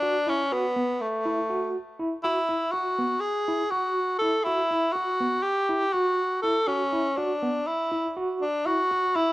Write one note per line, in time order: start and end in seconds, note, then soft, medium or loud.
0.00 0.31 D4 loud
0.00 0.16 F#4 medium
0.27 0.54 C#4 loud
0.27 0.40 E4 medium
0.52 1.03 B3 medium
0.52 0.65 F#4 medium
0.76 0.90 B3 medium
1.01 1.75 A3 medium
1.25 1.39 E4 medium
1.50 1.77 F#4 medium
1.99 2.13 E4 medium
2.24 2.73 E4 medium
2.24 2.38 F#4 medium
2.49 2.62 E4 medium
2.72 3.22 F#4 medium
2.72 2.87 F#4 medium
2.99 3.12 B3 medium
3.20 3.72 G#4 medium
3.48 3.61 E4 medium
3.71 4.18 F#4 medium
3.71 3.99 F#4 medium
4.19 4.35 E4 medium
4.19 4.45 A4 loud
4.44 4.94 E4 medium
4.44 4.60 F#4 medium
4.71 4.84 E4 medium
4.93 5.44 F#4 loud
4.93 5.09 F#4 medium
5.20 5.34 B3 medium
5.43 5.94 G4 loud
5.69 5.83 E4 medium
5.93 6.42 F#4 loud
5.93 6.21 F#4 medium
6.42 6.57 E4 medium
6.42 6.69 A4 loud
6.68 7.18 C#4 medium
6.68 6.82 F#4 medium
6.93 7.06 E4 medium
7.17 7.69 D4 medium
7.17 7.31 F#4 medium
7.43 7.56 B3 medium
7.67 8.15 E4 medium
7.92 8.05 E4 medium
8.17 8.44 F#4 medium
8.41 8.68 D4 medium
8.66 8.80 E4 medium
8.66 9.17 F#4 loud
8.91 9.05 F#4 medium
9.16 9.29 E4 medium
9.16 9.33 E4 medium